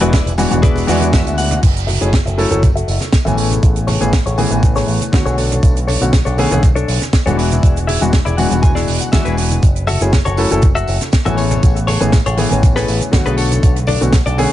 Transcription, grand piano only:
0.00 0.13 E3 medium
0.00 0.14 G#3 medium
0.00 0.14 B3 medium
0.00 0.14 D4 medium
0.00 0.14 F#4 loud
0.38 0.49 E3 medium
0.38 0.49 G#3 medium
0.38 0.49 B3 medium
0.38 0.49 D4 medium
0.38 0.49 F#4 loud
0.50 0.85 E3 medium
0.50 0.85 G#3 medium
0.50 0.86 B3 medium
0.50 0.86 D4 medium
0.50 0.86 F#4 medium
0.87 1.61 E3 loud
0.87 1.61 G#3 medium
0.87 1.62 B3 medium
0.87 1.62 D4 medium
0.87 1.62 F#4 loud
2.01 2.14 F#3 medium
2.01 2.14 A3 medium
2.01 2.14 C#4 medium
2.01 2.14 E4 medium
2.01 2.14 G#4 medium
2.37 2.48 F#3 medium
2.37 2.48 A3 medium
2.37 2.48 C#4 medium
2.37 2.48 E4 medium
2.37 2.48 A4 loud
2.51 2.64 F#3 medium
2.51 2.64 A3 medium
2.51 2.64 C#4 medium
2.51 2.64 E4 medium
2.51 2.64 A4 loud
3.25 3.97 E3 medium
3.25 3.98 A3 medium
3.25 3.98 B3 medium
3.25 3.98 C#4 medium
3.25 3.98 G#5 medium
4.00 4.13 E3 medium
4.00 4.14 A3 medium
4.00 4.14 B3 medium
4.00 4.14 C#4 medium
4.00 4.14 G#4 medium
4.38 4.49 E3 medium
4.38 4.49 A3 medium
4.38 4.49 B3 medium
4.38 4.49 C#4 medium
4.38 4.49 G#4 medium
4.51 5.10 E3 medium
4.51 5.10 A3 medium
4.51 5.10 B3 medium
4.51 5.11 C#4 medium
4.51 5.11 G#5 medium
5.12 5.98 D3 medium
5.12 5.98 A3 medium
5.12 5.98 B3 medium
5.12 5.99 F#4 medium
5.12 5.99 C#5 medium
6.01 6.14 D3 medium
6.01 6.14 A3 medium
6.01 6.14 B3 medium
6.01 6.14 C#4 medium
6.01 6.14 F#4 medium
6.38 6.48 D3 medium
6.38 6.48 A3 medium
6.38 6.48 B3 medium
6.38 6.48 C#4 medium
6.38 6.49 G#4 loud
6.51 6.64 D3 medium
6.51 6.64 A3 medium
6.51 6.64 B3 medium
6.51 6.64 C#4 medium
6.51 6.64 G#4 loud
7.26 7.98 E3 medium
7.26 7.98 G#3 medium
7.26 7.98 B3 medium
7.26 7.99 D4 medium
7.26 7.99 F#4 medium
8.01 8.14 E3 medium
8.01 8.14 G#3 medium
8.01 8.14 B3 medium
8.01 8.14 D4 medium
8.01 8.14 F#4 medium
8.38 8.49 E3 medium
8.38 8.49 G#3 medium
8.38 8.49 B3 medium
8.38 8.50 D4 medium
8.38 8.50 F#4 medium
8.51 9.10 E3 medium
8.51 9.10 G#3 medium
8.51 9.10 B3 medium
8.51 9.11 D4 medium
8.51 9.11 F#4 medium
9.13 9.61 E3 medium
9.13 9.62 G#3 medium
9.13 9.62 B3 medium
9.13 9.62 D4 medium
9.13 9.62 F#4 medium
10.01 10.14 F#3 medium
10.01 10.14 A3 medium
10.01 10.14 C#4 medium
10.01 10.14 E4 medium
10.01 10.14 G#4 medium
10.38 10.48 F#3 medium
10.38 10.48 A3 medium
10.38 10.48 C#4 medium
10.38 10.48 E4 medium
10.38 10.48 A4 loud
10.51 10.64 F#3 medium
10.51 10.64 A3 medium
10.51 10.64 C#4 medium
10.51 10.64 E4 medium
10.51 10.64 A4 loud
11.25 11.98 E3 medium
11.25 11.98 A3 medium
11.25 11.98 B3 medium
11.25 11.98 C#4 medium
11.25 11.99 G#5 medium
12.00 12.13 E3 medium
12.00 12.13 A3 medium
12.00 12.14 B3 medium
12.00 12.14 C#4 medium
12.00 12.14 G#4 medium
12.37 12.49 E3 medium
12.37 12.49 A3 medium
12.37 12.49 B3 medium
12.37 12.49 C#4 medium
12.37 12.49 G#4 medium
12.50 13.10 E3 medium
12.50 13.10 A3 medium
12.50 13.10 B3 medium
12.50 13.11 C#4 medium
12.50 13.11 G#5 medium
13.11 13.97 D3 medium
13.11 13.98 A3 medium
13.11 13.98 B3 medium
13.11 13.98 F#4 medium
13.11 13.98 C#5 medium
14.01 14.14 D3 medium
14.01 14.14 A3 medium
14.01 14.14 B3 medium
14.01 14.14 C#4 medium
14.01 14.14 F#4 medium
14.38 14.48 D3 medium
14.38 14.48 A3 medium
14.38 14.48 B3 medium
14.38 14.48 C#4 medium
14.38 14.48 G#4 loud

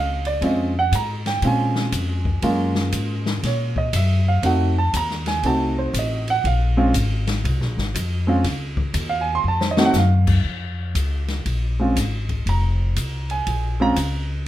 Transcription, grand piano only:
0.00 0.25 F5 medium
0.27 0.42 D5 medium
0.42 0.71 G#3 medium
0.42 0.72 C4 medium
0.42 0.72 C#4 medium
0.42 0.72 F4 medium
0.46 0.76 D#5 medium
0.79 0.93 F#5 medium
0.95 1.26 A#5 medium
1.27 1.43 G5 medium
1.44 2.19 G#3 medium
1.44 2.20 C4 medium
1.44 2.20 C#4 medium
1.44 2.20 F4 medium
1.44 2.41 G#5 medium
2.43 3.83 G#3 medium
2.43 3.83 A#3 medium
2.43 3.83 C#4 medium
2.43 3.83 F4 medium
3.46 3.76 C#5 medium
3.78 3.93 D#5 medium
3.96 4.27 E5 medium
4.28 4.44 F5 medium
4.43 4.73 A3 medium
4.43 4.73 C4 medium
4.43 4.73 D#4 medium
4.43 4.74 F#4 medium
4.43 4.77 F#5 medium
4.78 4.94 A5 medium
4.97 5.27 A#5 medium
5.28 5.44 G#5 medium
5.45 6.21 A3 medium
5.45 6.21 C4 medium
5.45 6.21 D#4 medium
5.45 6.21 F#4 medium
5.45 5.77 A5 medium
5.78 5.94 C5 medium
5.99 6.28 D#5 medium
6.30 6.45 F#5 loud
6.47 7.92 F5 medium
6.77 6.92 G#3 medium
6.77 6.92 C4 medium
6.77 6.93 C#4 medium
6.77 6.93 F4 medium
8.27 8.42 G#3 medium
8.27 8.43 C4 medium
8.27 8.43 C#4 medium
8.27 8.44 F4 medium
9.10 9.26 F5 medium
9.21 9.32 G#5 medium
9.35 9.44 C6 loud
9.48 9.62 A5 medium
9.61 9.77 C5 medium
9.71 9.83 D#5 loud
9.77 9.93 A3 medium
9.77 9.93 C4 medium
9.77 9.93 D#4 medium
9.77 9.94 F#4 medium
9.85 9.94 F#5 loud
9.98 11.43 F5 medium
11.79 11.94 G#3 medium
11.79 11.95 C4 medium
11.79 11.95 C#4 medium
11.79 11.95 F4 medium
12.49 13.27 A#5 medium
13.31 13.77 G#5 medium
13.80 13.95 G#3 medium
13.80 13.95 C4 medium
13.80 13.96 C#4 medium
13.80 13.96 F4 medium
13.80 14.27 A#5 loud

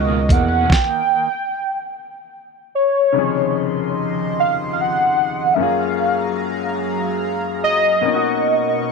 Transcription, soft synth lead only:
0.00 0.33 D#5 medium
0.32 0.74 F#5 loud
0.72 2.34 G5 loud
2.75 3.92 C#5 loud
4.40 4.54 F5 loud
4.73 4.82 F5 medium
4.81 5.56 F#5 loud
5.54 5.63 E5 medium
5.61 6.83 F5 loud
7.64 8.82 D#5 loud

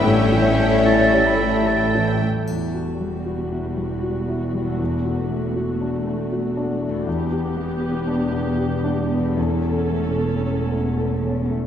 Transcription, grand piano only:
0.04 2.44 A2 medium
0.32 0.75 E3 soft
0.60 1.03 A3 soft
0.87 1.29 E4 soft
1.13 1.56 G4 soft
1.41 1.83 E4 soft
1.68 2.11 A3 soft
1.95 2.38 E3 soft
2.22 2.48 A3 soft
2.49 4.76 E2 soft
2.74 3.16 F#4 soft
3.01 3.42 G3 soft
3.26 3.67 F#4 soft
3.52 3.93 E4 soft
3.77 4.18 G3 soft
4.02 4.43 F#4 soft
4.28 4.69 E4 soft
4.54 4.80 G3 soft
4.80 7.03 E2 soft
5.05 5.46 F#4 soft
5.30 5.71 A3 soft
5.56 5.96 F#4 soft
5.81 6.22 D4 soft
6.07 6.47 A3 soft
6.32 6.72 F#4 soft
6.57 6.97 D4 soft
6.82 7.07 A3 soft
7.07 9.34 E2 soft
7.32 7.72 G4 soft
7.57 7.97 B3 soft
7.81 8.22 G4 soft
8.07 8.48 D4 soft
8.32 8.73 B3 soft
8.58 9.00 G4 soft
8.84 9.26 D4 soft
9.11 9.37 B3 soft
9.37 11.67 E2 soft
9.65 10.07 A4 soft
9.92 10.34 A3 soft
10.17 10.60 A4 soft
10.44 10.87 C#4 soft
10.71 11.13 A3 soft
10.97 11.40 A4 soft
11.25 11.66 C#4 soft
11.50 11.67 A3 soft

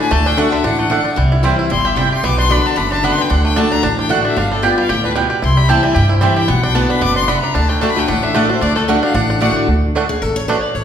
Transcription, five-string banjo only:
0.00 0.11 D4 medium
0.11 0.50 A3 medium
0.26 0.36 D4 medium
0.38 0.63 D4 medium
0.52 0.89 D3 medium
0.64 0.90 D4 medium
0.79 1.15 A3 medium
0.91 1.04 D4 medium
1.05 1.17 D4 medium
1.17 1.56 G3 medium
1.32 1.58 E4 medium
1.44 1.82 C4 medium
1.59 1.95 E4 medium
1.71 1.96 G3 medium
1.85 2.11 G4 medium
1.97 2.24 G3 medium
2.12 2.24 G4 medium
2.24 2.62 B3 medium
2.38 2.50 D4 medium
2.51 2.65 D4 medium
2.66 2.92 D4 medium
2.77 3.16 D3 medium
2.92 3.30 D4 medium
3.04 3.17 B3 medium
3.18 3.30 B3 medium
3.30 3.55 D4 medium
3.45 3.81 A3 medium
3.56 3.71 D4 medium
3.72 3.82 D4 medium
3.83 3.98 D4 medium
3.99 4.09 D4 medium
4.10 4.24 D4 medium
4.25 4.36 D4 medium
4.37 4.75 D4 medium
4.52 4.77 G3 medium
4.63 4.88 G4 medium
4.78 5.14 G3 medium
4.89 5.28 G4 medium
5.04 5.40 D4 medium
5.16 5.42 G3 medium
5.30 5.42 G4 medium
5.42 5.81 E4 medium
5.57 5.82 G3 medium
5.69 5.93 G4 medium
5.83 6.20 G3 medium
5.94 6.34 G4 medium
6.09 6.46 E4 medium
6.21 6.48 G3 medium
6.36 6.49 G4 medium
6.48 6.74 B3 medium
6.63 6.90 D4 medium
6.75 7.01 B3 medium
6.90 7.16 D4 medium
7.02 7.27 B3 medium
7.16 7.43 D4 medium
7.28 7.55 B3 medium
7.43 7.54 D4 medium
7.55 7.81 D4 medium
7.69 7.96 A3 medium
7.81 8.08 D4 medium
7.96 8.34 A3 medium
8.08 8.22 D4 medium
8.23 8.49 D4 medium
8.35 8.76 A3 medium
8.49 8.61 D4 medium
8.61 8.87 D4 medium
8.76 9.12 A3 medium
8.88 9.02 D4 medium
9.03 9.14 D4 medium
9.15 9.29 D4 medium
9.30 9.40 D4 medium
9.42 9.55 D4 medium
9.56 9.68 D4 medium
9.96 10.02 A3 medium
9.96 10.02 D4 medium
10.49 10.55 A3 medium
10.49 10.55 D4 medium

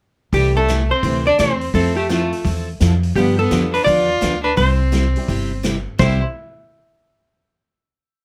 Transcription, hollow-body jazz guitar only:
0.34 0.57 G4 medium
0.57 0.91 A4 medium
0.91 1.26 C5 medium
1.27 1.39 D5 medium
1.40 1.72 C5 loud
1.75 1.96 A4 medium
1.97 2.09 G4 medium
2.09 2.45 F4 medium
3.16 3.38 G4 medium
3.39 3.72 A4 medium
3.74 3.84 B4 medium
3.84 4.40 D5 loud
4.44 4.57 B4 medium
4.57 5.60 C5 medium
5.99 6.21 C5 medium

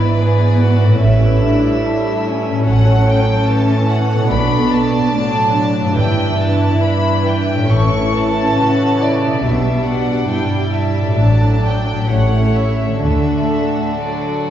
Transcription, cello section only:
0.00 0.99 G#2 medium
1.01 2.64 A2 medium
2.67 4.28 A2 medium
4.31 5.15 B2 medium
5.15 5.97 A2 medium
5.98 7.72 G2 medium
7.72 8.60 A2 medium
8.60 9.43 C#3 medium
9.44 10.28 B2 soft
10.29 11.19 G2 soft
11.19 12.09 A2 soft
12.10 13.01 A2 soft
13.03 14.50 D3 soft

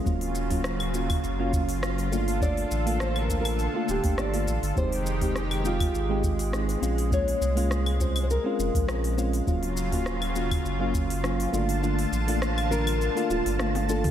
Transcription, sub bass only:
0.06 1.18 D#1 loud
1.24 2.14 F#1 medium
2.12 2.65 G1 medium
2.71 3.68 A1 medium
3.89 4.00 D1 loud
4.04 4.47 G1 medium
4.47 4.58 A1 medium
4.62 4.72 G1 medium
4.76 5.88 F1 loud
5.93 6.76 G#1 medium
6.82 7.35 A#1 medium
7.41 8.38 C2 medium
8.59 8.70 F1 loud
8.74 9.41 A#1 medium
9.47 10.59 D#1 medium
10.65 11.47 F#1 medium
11.53 12.06 G1 loud
12.12 13.09 A1 medium
13.30 13.41 D1 loud
13.46 14.06 G1 medium
14.04 14.11 G2 medium

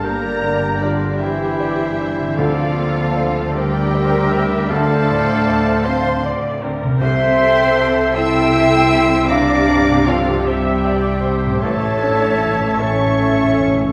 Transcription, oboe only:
0.04 0.84 G5 medium
0.82 1.21 A#4 medium
1.22 2.39 C5 medium
2.38 3.27 D5 medium
3.54 4.71 E5 medium
4.70 5.87 F5 loud
5.85 6.24 A5 medium
6.99 8.16 G5 loud
8.15 9.29 C6 loud
9.29 10.09 A#5 loud
10.07 10.47 D5 medium
10.46 11.62 E5 medium
11.62 12.83 E5 loud
12.81 13.73 A5 medium

